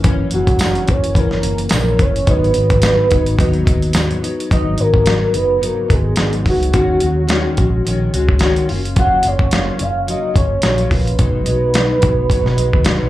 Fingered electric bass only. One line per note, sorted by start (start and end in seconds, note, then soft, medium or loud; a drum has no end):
0.00 0.21 F#1 loud
0.33 0.77 F#1 loud
0.89 1.23 F#1 medium
1.44 1.66 F#1 medium
1.72 1.94 A#1 loud
1.99 2.21 F#1 loud
2.27 2.50 G#1 loud
2.56 3.01 G#1 loud
3.12 3.34 G#1 medium
3.39 3.61 D#2 loud
3.67 4.12 D#2 medium
4.51 4.73 G#1 medium
4.79 5.23 G#1 medium
5.35 5.69 F#1 medium
5.90 6.12 G#1 medium
6.19 6.47 G#1 medium
6.46 6.68 C#2 medium
6.74 6.96 D#2 loud
7.02 7.46 D#2 loud
7.58 7.80 A#1 medium
7.86 8.08 A#1 medium
8.14 8.58 C#2 medium
8.70 9.14 F#1 medium
9.25 9.69 F#1 loud
9.81 10.15 F#1 medium
10.35 10.58 F#1 medium
10.64 10.86 A#1 medium
10.91 11.13 A#1 medium
11.19 11.42 B1 loud
11.48 11.92 B1 medium
12.03 12.25 B1 medium
12.44 12.55 B2 loud
12.57 12.70 B1 medium
12.73 12.83 D#2 medium
12.86 muted fingered electric bass stroke soft
13.02 13.09 B1 medium